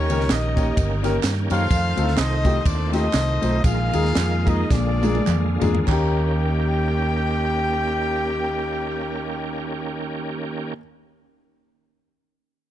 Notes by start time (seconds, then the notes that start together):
Already playing: D#2 D#3 A#3 C#4 G4 A#4 C#5
0.09 C#2 A#3 C#4 D#4 G4 A#4, ride bell, tambourine
0.20 snare
0.30 A#1 D#4 G4 A#4 D#5, snare, clap, ride bell, tambourine
0.56 A#3 C#4 D#4 G4 C#5, kick, ride bell, tambourine
0.77 G1, kick, ride bell, tambourine
1.03 A#3 C#4 D#4 G4 A#4, snare, ride bell, tambourine
1.23 G2, snare, clap, ride bell, tambourine
1.50 F#2 A#3 C#4 D#4 F4 G4 A4 C5 C#5 F5, ride bell, tambourine
1.71 F2 A3 C4 F4, kick, ride bell, tambourine
1.97 D2 A3 C4 D#4 F4 A4, ride bell, tambourine
2.08 snare
2.17 C2 D#4 A4 C5 D#5, snare, clap, ride bell, tambourine
2.44 A3 C4 D#4 F4 G4, kick, ride bell, tambourine
2.65 D#2 D4 A4 D5, kick, ride bell, tambourine
2.92 A3 C4 D#4 F4 G4 A4 C5 D#5, snare, ride bell, tambourine
3.13 C2, snare, clap, ride bell, tambourine
3.42 B1 A3 C4 D#4 F4 C5, ride bell, tambourine
3.64 A#1 A#2 D#3 G#3 A#3 F4 G#4 F5, kick, ride bell, tambourine
3.93 D#2 G#3 A#3 D#4 F4 G#4, ride bell, tambourine
4.05 snare
4.16 F2, snare, clap, ride bell, tambourine
4.46 G#3 A#3 D#4 F4 G#4 D#5, kick, ride bell, tambourine
4.70 A#1 A#2 D3 G#3 D4 F4 G#4 D5, kick, snare, tambourine
5.02 G#3 A#3 D4 F4 G#4, high tom, tambourine
5.15 high tom
5.27 F2, clap, mid tom, tambourine
5.61 E2 G#3 A#3 D4 F4 G#4, floor tom, tambourine
5.75 floor tom
5.84 D#2 D#3 A#3 C#4 G4 G5, kick, clap, crash
5.89 D#4 G4